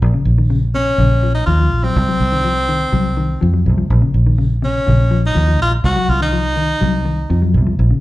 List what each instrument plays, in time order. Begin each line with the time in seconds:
0.02 fingered electric bass A#1
0.14 clean electric guitar C#3
0.25 fingered electric bass A#1
0.38 clean electric guitar D#3
0.50 clean electric guitar C#3
0.74 clean electric guitar C3, tenor saxophone C#4
0.98 fingered electric bass A#1, clean electric guitar C#3
1.23 clean electric guitar F3
1.34 tenor saxophone D#4
1.46 fingered electric bass D#2, clean electric guitar F3, tenor saxophone F4
1.60 clean electric guitar F3
1.72 fingered electric bass A#1
1.84 clean electric guitar F#3, tenor saxophone C4
1.96 fingered electric bass C2
2.08 clean electric guitar F#3
2.20 fingered electric bass C2
2.32 clean electric guitar D#3
2.44 clean electric guitar F3
2.68 clean electric guitar D#3
2.92 fingered electric bass C2, clean electric guitar F#3
3.17 clean electric guitar D#3
3.41 fingered electric bass F2, clean electric guitar F3
3.54 clean electric guitar F#3
3.66 fingered electric bass C2
3.78 clean electric guitar F3
3.90 fingered electric bass A#1
4.02 clean electric guitar C#3
4.14 fingered electric bass A#1
4.26 clean electric guitar D#3
4.38 clean electric guitar C#3
4.62 clean electric guitar C3, tenor saxophone C#4
4.87 fingered electric bass A#1, clean electric guitar C#3
5.11 clean electric guitar F3
5.26 tenor saxophone D#4
5.35 fingered electric bass D#2, clean electric guitar F3
5.47 clean electric guitar F3
5.61 fingered electric bass A#1, tenor saxophone F4
5.71 muted clean electric guitar stroke
5.84 fingered electric bass C2, tenor saxophone F#4
5.96 clean electric guitar F#3
6.08 fingered electric bass C2, tenor saxophone F4
6.20 clean electric guitar D#3, tenor saxophone D#4
6.33 clean electric guitar F3
6.56 clean electric guitar D#3
6.81 fingered electric bass C2, clean electric guitar F#3
7.05 clean electric guitar D#3
7.30 fingered electric bass F2, clean electric guitar F3
7.42 clean electric guitar F#3
7.54 fingered electric bass C2
7.67 clean electric guitar F3
7.79 fingered electric bass A#1
7.91 clean electric guitar C#3